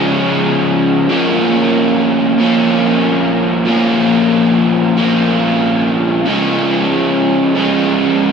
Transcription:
Already playing: C#3 F3 G#3 C#4
1.09 A#2 F3 A#3 C#4
2.38 A#2 F3 A#3 C#4
3.66 A#2 F3 A#3 C#4
4.97 A#2 F3 A#3 C#4
6.26 C#3 F3 G#3 C#4
7.55 C#3 F3 G#3 C#4

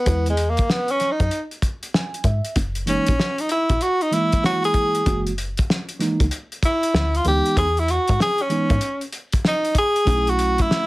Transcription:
Already playing: B3
0.05 E2 E3 G#3 B3 E4, kick, closed hi-hat
0.26 G#3, closed hi-hat
0.37 closed hi-hat
0.50 A#3
0.57 kick, closed hi-hat
0.70 B3, snare
0.88 C#4, closed hi-hat
1.00 snare, closed hi-hat
1.12 D#4
1.20 F#2, kick, closed hi-hat
1.31 closed hi-hat
1.51 closed hi-hat
1.62 kick, closed hi-hat
1.83 closed hi-hat
1.94 G#5, snare
2.14 closed hi-hat
2.24 G#2 E5, kick, closed hi-hat
2.45 closed hi-hat
2.56 F#1, kick, closed hi-hat
2.75 closed hi-hat
2.86 E3 G#3 A#3 C#4 D#4, closed hi-hat
3.06 A#1, kick, closed hi-hat
3.20 snare
3.38 D#4, closed hi-hat
3.49 E4, closed hi-hat
3.69 A#1, kick, closed hi-hat
3.81 F#4, closed hi-hat
4.01 D#4, closed hi-hat
4.11 E3 G#3 A#3 E4, closed hi-hat
4.32 kick, closed hi-hat
4.44 F#4, snare
4.64 G#4, closed hi-hat
4.74 kick, closed hi-hat
4.95 closed hi-hat
5.05 F#1 E3 G#3 A#3 F#4, kick, closed hi-hat
5.27 closed hi-hat
5.38 closed hi-hat
5.57 kick, closed hi-hat
5.70 snare
5.89 closed hi-hat
5.99 E3 G#3 A#3 D#4, snare, closed hi-hat
6.20 C#2, kick, closed hi-hat
6.31 closed hi-hat
6.52 closed hi-hat
6.63 E4, kick, closed hi-hat
6.83 closed hi-hat
6.94 D2, snare
7.15 F4, closed hi-hat
7.24 D2 E3 G#3 B3 D#4 G4, closed hi-hat
7.46 closed hi-hat
7.57 E2 G#4, kick, closed hi-hat
7.77 E4, closed hi-hat
7.88 F#4, closed hi-hat
8.08 G#2, kick, closed hi-hat
8.20 G#4, snare
8.38 C#4, closed hi-hat
8.49 E3 G#3 B3 D#4, closed hi-hat
8.70 G#2, kick, closed hi-hat
8.81 closed hi-hat
9.01 closed hi-hat
9.13 closed hi-hat
9.32 kick, closed hi-hat
9.45 D#4, snare
9.65 closed hi-hat
9.75 G#4, kick, closed hi-hat
9.96 closed hi-hat
10.05 B1 F#3 A3 C#4 D#4, kick, closed hi-hat
10.14 E4
10.27 F#4, closed hi-hat
10.39 closed hi-hat
10.58 E4, kick, closed hi-hat
10.71 snare

